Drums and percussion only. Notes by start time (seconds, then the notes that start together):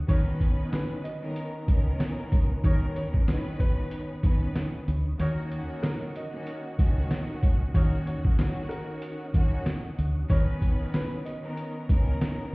0.08 kick, closed hi-hat
0.40 kick, closed hi-hat
0.73 snare, closed hi-hat
1.05 closed hi-hat
1.36 closed hi-hat
1.68 kick, closed hi-hat
2.00 snare, closed hi-hat
2.32 kick, closed hi-hat
2.64 kick, closed hi-hat
2.96 closed hi-hat
3.14 kick
3.28 snare, closed hi-hat
3.60 kick, closed hi-hat
3.91 closed hi-hat
4.23 kick, closed hi-hat
4.55 snare, closed hi-hat
4.88 closed hi-hat
5.20 closed hi-hat
5.52 closed hi-hat
5.83 snare, closed hi-hat
6.16 closed hi-hat
6.47 closed hi-hat
6.79 kick, closed hi-hat
7.11 snare, closed hi-hat
7.43 kick, closed hi-hat
7.74 kick, closed hi-hat
8.07 closed hi-hat
8.25 kick
8.39 snare, closed hi-hat
8.71 closed hi-hat
9.02 closed hi-hat
9.34 kick, closed hi-hat
9.66 snare, closed hi-hat
9.99 closed hi-hat
10.30 kick, closed hi-hat
10.62 kick, closed hi-hat
10.94 snare, closed hi-hat
11.26 closed hi-hat
11.57 closed hi-hat
11.89 kick, closed hi-hat
12.21 snare, closed hi-hat